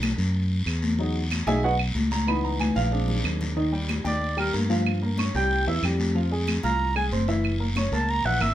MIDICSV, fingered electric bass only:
0, 0, Header, 1, 2, 480
1, 0, Start_track
1, 0, Tempo, 322581
1, 1475, Time_signature, 4, 2, 24, 8
1, 12708, End_track
2, 0, Start_track
2, 0, Title_t, "Fingered electric bass"
2, 0, Program_c, 0, 33
2, 0, Note_on_c, 0, 35, 90
2, 189, Note_off_c, 0, 35, 0
2, 267, Note_on_c, 0, 42, 98
2, 940, Note_off_c, 0, 42, 0
2, 982, Note_on_c, 0, 40, 91
2, 2103, Note_off_c, 0, 40, 0
2, 2182, Note_on_c, 0, 35, 89
2, 2856, Note_off_c, 0, 35, 0
2, 2899, Note_on_c, 0, 37, 100
2, 4021, Note_off_c, 0, 37, 0
2, 4108, Note_on_c, 0, 34, 106
2, 4778, Note_off_c, 0, 34, 0
2, 4823, Note_on_c, 0, 39, 96
2, 5943, Note_off_c, 0, 39, 0
2, 6021, Note_on_c, 0, 39, 84
2, 6695, Note_off_c, 0, 39, 0
2, 6757, Note_on_c, 0, 43, 91
2, 7871, Note_off_c, 0, 43, 0
2, 7952, Note_on_c, 0, 36, 93
2, 8399, Note_off_c, 0, 36, 0
2, 8434, Note_on_c, 0, 40, 73
2, 8656, Note_off_c, 0, 40, 0
2, 8669, Note_on_c, 0, 41, 105
2, 9788, Note_off_c, 0, 41, 0
2, 9876, Note_on_c, 0, 36, 92
2, 10545, Note_off_c, 0, 36, 0
2, 10585, Note_on_c, 0, 30, 91
2, 11708, Note_off_c, 0, 30, 0
2, 11782, Note_on_c, 0, 37, 96
2, 12235, Note_off_c, 0, 37, 0
2, 12261, Note_on_c, 0, 34, 78
2, 12491, Note_off_c, 0, 34, 0
2, 12506, Note_on_c, 0, 32, 104
2, 12708, Note_off_c, 0, 32, 0
2, 12708, End_track
0, 0, End_of_file